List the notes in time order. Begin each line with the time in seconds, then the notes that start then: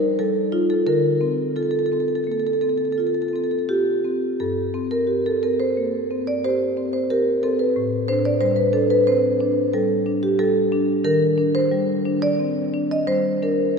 Already playing: F3 D#4 A#4
0.19 G3 A4
0.52 D#4 F4
0.70 A4
0.86 D3 A#4
1.21 C4
1.56 F4 A4
1.63 A4
1.71 A4
1.79 A4
1.86 A4
1.92 C4 A4
2.00 A4
2.08 A4
2.15 A4
2.24 A#3 A4
2.32 A4
2.40 A4
2.47 A4
2.53 A4
2.61 C4 A4
2.69 A4
2.78 A4
2.85 A4
2.92 A4
2.98 F4 A4
3.07 A4
3.14 A4
3.22 A4
3.28 A4
3.33 C4 A4
3.44 A4
3.51 A4
3.59 A4
3.69 F4 G4
4.05 C4
4.40 G2 A4
4.74 C4
4.91 A#4
5.07 G4
5.26 A4
5.43 C4 A#4
5.60 C5
5.77 A#3
6.11 C4
6.27 D5
6.44 G4 C5
6.77 C4
6.93 C5
7.10 G4 A#4
7.43 C4 A4
7.59 B4
7.76 A2
8.08 D4 C5
8.25 D5
8.41 G3 C5
8.56 B4
8.73 D4 A4
8.90 B4
9.07 C4 C5
9.41 D4
9.73 G3 A4
10.06 D4
10.23 G4
10.39 G3 A4
10.72 D4
11.04 D#3 A#4
11.38 D4
11.55 C5
11.71 G3
12.06 D4
12.22 D5
12.39 C4
12.74 D4
12.91 D#5
13.07 G3 C5
13.43 D4 A#4